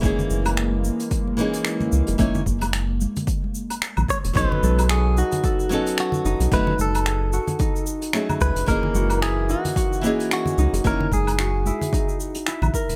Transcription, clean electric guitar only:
X:1
M:4/4
L:1/8
Q:"Swing 16ths" 1/4=111
K:Bmix
V:1 name="Clean electric guitar"
z8 | z6 z c | B2 G F3 F2 | B A4 z2 B |
^A2 G F3 F2 | ^A G4 z3 |]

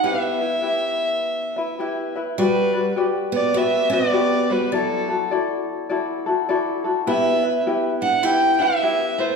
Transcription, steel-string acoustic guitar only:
X:1
M:4/4
L:1/8
Q:"Swing" 1/4=102
K:Em
V:1 name="Steel-string acoustic guitar"
B,6- B, z | [K:G] G,2 z B, B, B,2 G, | F,2 z6 | B,2 z D E B,2 A, |]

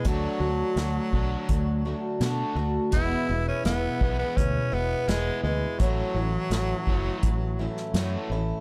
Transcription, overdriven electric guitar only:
X:1
M:4/4
L:1/8
Q:1/4=84
K:Emix
V:1 name="Overdriven electric guitar" clef=bass
[D,A,D] [D,A,] [D,A,] [D,A,D] [D,A,] [D,A,] [D,A,D] [D,A,] | [E,,B,,E,] [E,,B,,] [E,,B,,] [E,,B,,E,] [E,,B,,] [E,,B,,] [E,,B,,E,] [E,,B,,] | [A,,E,A,] [A,,E,] [A,,E,] [A,,E,A,] [A,,E,] [A,,E,] [A,,E,A,] [A,,E,] |]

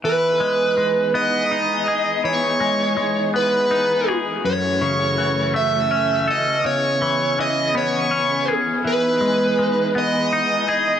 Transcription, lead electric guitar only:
X:1
M:6/8
L:1/8
Q:3/8=54
K:E
V:1 name="Lead electric guitar"
B3 d3 | c3 B2 z | c3 e2 d | c2 d c2 z |
B3 d3 |]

